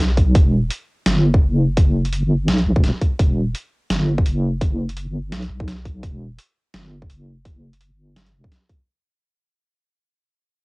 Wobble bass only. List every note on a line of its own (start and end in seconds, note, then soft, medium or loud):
0.00 0.34 B1 medium
0.35 0.70 E1 medium
1.06 1.41 G1 loud
1.42 2.24 F#1 medium
2.23 2.50 G1 medium
2.48 2.65 B1 medium
2.66 2.78 B1 loud
2.76 2.92 E1 medium
3.19 3.54 E1 loud
3.90 4.25 G1 loud
4.26 5.08 F#1 medium
5.07 5.34 G1 medium
5.32 5.49 B1 medium
5.50 6.02 B1 medium
6.03 6.38 E1 loud
6.74 7.09 G1 loud
7.10 7.92 F#1 loud
7.91 8.35 G1 medium
8.34 8.50 E1 medium